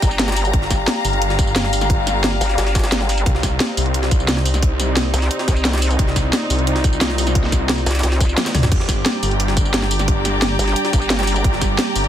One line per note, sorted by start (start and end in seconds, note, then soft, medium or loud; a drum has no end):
0.00 0.52 G1 loud
0.00 5.95 G4 medium
0.00 3.22 D5 medium
0.00 0.44 G5 loud
0.00 3.22 G5 medium
0.00 3.87 A#5 medium
0.00 kick loud
0.00 snare soft
0.00 closed hi-hat medium
0.00 tambourine medium
0.11 tambourine soft
0.19 snare loud
0.19 closed hi-hat medium
0.28 snare medium
0.28 snare soft
0.28 closed hi-hat medium
0.32 4.24 F5 loud
0.32 snare loud
0.32 closed hi-hat medium
0.36 closed hi-hat medium
0.36 open hi-hat medium
0.36 tambourine medium
0.45 closed hi-hat soft
0.45 tambourine soft
0.53 0.86 G1 medium
0.53 kick loud
0.53 closed hi-hat medium
0.62 snare soft
0.71 kick medium
0.71 snare medium
0.71 snare soft
0.71 closed hi-hat medium
0.71 tambourine medium
0.88 snare loud
0.88 closed hi-hat medium
1.05 2.40 G1 loud
1.05 closed hi-hat medium
1.05 open hi-hat medium
1.05 tambourine medium
1.13 closed hi-hat soft
1.22 closed hi-hat medium
1.30 snare medium
1.30 closed hi-hat soft
1.39 kick loud
1.39 closed hi-hat medium
1.39 tambourine medium
1.47 tambourine soft
1.56 snare loud
1.56 closed hi-hat medium
1.64 snare medium
1.64 snare soft
1.73 closed hi-hat medium
1.73 open hi-hat medium
1.73 tambourine medium
1.81 snare soft
1.81 closed hi-hat soft
1.81 tambourine soft
1.90 kick loud
1.90 closed hi-hat medium
2.07 snare soft
2.07 closed hi-hat medium
2.07 tambourine medium
2.24 snare loud
2.24 closed hi-hat medium
2.41 2.57 G1 loud
2.41 closed hi-hat medium
2.41 open hi-hat medium
2.41 tambourine medium
2.50 snare soft
2.50 closed hi-hat soft
2.58 3.25 G1 loud
2.58 snare loud
2.58 closed hi-hat medium
2.67 snare medium
2.67 closed hi-hat soft
2.75 kick loud
2.75 snare medium
2.75 closed hi-hat medium
2.75 tambourine medium
2.79 snare medium
2.79 closed hi-hat medium
2.84 snare loud
2.84 closed hi-hat medium
2.84 tambourine soft
2.92 snare loud
2.92 closed hi-hat medium
3.01 snare medium
3.01 snare soft
3.09 closed hi-hat medium
3.09 open hi-hat medium
3.09 tambourine medium
3.18 closed hi-hat soft
3.18 tambourine soft
3.26 3.59 C2 loud
3.26 8.68 C4 medium
3.26 9.82 C4 medium
3.26 8.68 D5 medium
3.26 kick loud
3.26 closed hi-hat medium
3.35 snare soft
3.42 8.72 D#4 medium
3.42 kick medium
3.42 snare medium
3.42 snare soft
3.42 closed hi-hat medium
3.42 tambourine medium
3.60 snare loud
3.60 closed hi-hat medium
3.77 5.12 C2 loud
3.77 closed hi-hat medium
3.77 open hi-hat medium
3.77 tambourine medium
3.86 closed hi-hat soft
3.94 closed hi-hat medium
4.03 snare medium
4.03 closed hi-hat soft
4.11 kick loud
4.11 closed hi-hat medium
4.11 tambourine medium
4.20 tambourine soft
4.28 snare loud
4.28 closed hi-hat medium
4.37 snare medium
4.37 snare soft
4.45 closed hi-hat medium
4.45 open hi-hat medium
4.45 tambourine medium
4.54 snare soft
4.54 closed hi-hat soft
4.54 tambourine soft
4.62 kick loud
4.62 closed hi-hat medium
4.80 snare soft
4.80 closed hi-hat medium
4.80 tambourine medium
4.97 snare loud
4.97 closed hi-hat medium
5.14 5.29 C2 loud
5.14 closed hi-hat medium
5.14 open hi-hat medium
5.14 tambourine medium
5.22 snare soft
5.22 closed hi-hat soft
5.31 closed hi-hat medium
5.39 snare medium
5.39 closed hi-hat soft
5.48 5.98 C2 medium
5.48 kick loud
5.48 snare soft
5.48 closed hi-hat medium
5.48 tambourine medium
5.56 tambourine soft
5.65 snare loud
5.65 closed hi-hat medium
5.73 snare loud
5.73 snare soft
5.73 closed hi-hat medium
5.78 snare medium
5.78 closed hi-hat medium
5.82 closed hi-hat medium
5.82 open hi-hat medium
5.82 tambourine medium
5.91 closed hi-hat soft
5.91 tambourine soft
5.99 6.32 C2 loud
5.99 8.69 F4 medium
5.99 kick loud
5.99 closed hi-hat medium
6.08 snare soft
6.16 kick medium
6.16 snare medium
6.16 snare soft
6.16 closed hi-hat medium
6.16 tambourine medium
6.33 snare loud
6.33 closed hi-hat loud
6.50 7.85 C2 loud
6.50 closed hi-hat medium
6.50 open hi-hat medium
6.50 tambourine medium
6.59 closed hi-hat soft
6.67 closed hi-hat medium
6.67 closed hi-hat loud
6.76 snare medium
6.76 closed hi-hat soft
6.84 kick loud
6.84 closed hi-hat medium
6.84 tambourine medium
6.93 tambourine soft
7.01 snare loud
7.01 closed hi-hat medium
7.10 snare medium
7.10 snare soft
7.18 closed hi-hat medium
7.18 open hi-hat medium
7.18 tambourine medium
7.27 snare soft
7.27 closed hi-hat soft
7.27 tambourine soft
7.35 kick loud
7.35 closed hi-hat medium
7.35 closed hi-hat loud
7.44 snare soft
7.52 kick medium
7.52 snare soft
7.52 closed hi-hat medium
7.52 tambourine medium
7.69 snare loud
7.69 closed hi-hat medium
7.78 tambourine soft
7.86 8.02 C2 loud
7.86 snare medium
7.86 closed hi-hat medium
7.86 open hi-hat medium
7.86 tambourine medium
7.91 snare medium
7.91 closed hi-hat medium
7.95 snare medium
7.95 closed hi-hat medium
7.95 closed hi-hat soft
7.99 snare medium
7.99 closed hi-hat medium
8.03 8.36 C2 medium
8.03 snare loud
8.03 closed hi-hat medium
8.03 closed hi-hat loud
8.12 snare medium
8.12 closed hi-hat soft
8.20 kick loud
8.20 snare soft
8.20 closed hi-hat medium
8.20 tambourine medium
8.29 tambourine soft
8.38 snare loud
8.38 closed hi-hat medium
8.38 closed hi-hat loud
8.38 high tom medium
8.46 snare loud
8.46 snare medium
8.46 snare soft
8.46 closed hi-hat medium
8.55 8.70 D2 medium
8.55 snare loud
8.55 closed hi-hat medium
8.55 open hi-hat medium
8.55 mid tom medium
8.55 tambourine medium
8.63 snare loud
8.63 closed hi-hat medium
8.63 closed hi-hat soft
8.63 mid tom medium
8.63 tambourine soft
8.72 9.04 G1 medium
8.72 12.08 G3 medium
8.72 11.42 D4 medium
8.72 12.08 G4 medium
8.72 kick loud
8.72 closed hi-hat medium
8.72 crash medium
8.80 snare soft
8.88 12.08 D5 medium
8.88 kick medium
8.88 snare medium
8.88 snare soft
8.88 closed hi-hat medium
8.88 tambourine medium
8.97 12.08 G5 medium
9.06 snare loud
9.06 closed hi-hat medium
9.06 closed hi-hat loud
9.17 12.08 A#5 medium
9.23 10.58 G1 loud
9.23 closed hi-hat medium
9.23 open hi-hat medium
9.23 tambourine medium
9.31 closed hi-hat soft
9.40 closed hi-hat medium
9.40 closed hi-hat loud
9.48 snare medium
9.48 closed hi-hat soft
9.57 kick loud
9.57 closed hi-hat medium
9.57 tambourine medium
9.65 tambourine soft
9.74 snare loud
9.74 closed hi-hat medium
9.82 snare medium
9.82 snare soft
9.91 closed hi-hat medium
9.91 open hi-hat medium
9.91 tambourine medium
9.99 snare soft
9.99 closed hi-hat soft
9.99 tambourine soft
10.08 kick loud
10.08 closed hi-hat medium
10.25 snare soft
10.25 closed hi-hat medium
10.25 tambourine medium
10.42 snare loud
10.42 closed hi-hat medium
10.59 10.75 G1 loud
10.59 closed hi-hat medium
10.59 open hi-hat medium
10.59 tambourine medium
10.68 snare soft
10.68 closed hi-hat soft
10.76 closed hi-hat medium
10.85 snare medium
10.85 closed hi-hat soft
10.93 11.43 G1 medium
10.93 kick loud
10.93 snare soft
10.93 closed hi-hat medium
10.93 tambourine medium
11.02 tambourine soft
11.10 snare loud
11.10 closed hi-hat medium
11.19 snare medium
11.19 snare soft
11.19 closed hi-hat medium
11.23 snare medium
11.23 closed hi-hat medium
11.27 closed hi-hat medium
11.27 open hi-hat medium
11.27 tambourine medium
11.36 closed hi-hat soft
11.36 tambourine soft
11.44 11.77 G1 medium
11.44 12.08 C4 medium
11.44 kick loud
11.44 closed hi-hat medium
11.53 snare soft
11.61 kick medium
11.61 snare medium
11.61 snare soft
11.61 closed hi-hat medium
11.61 tambourine medium
11.79 snare loud
11.79 closed hi-hat medium
11.96 12.08 G1 loud
11.96 closed hi-hat medium
11.96 open hi-hat medium
11.96 tambourine medium
12.04 closed hi-hat soft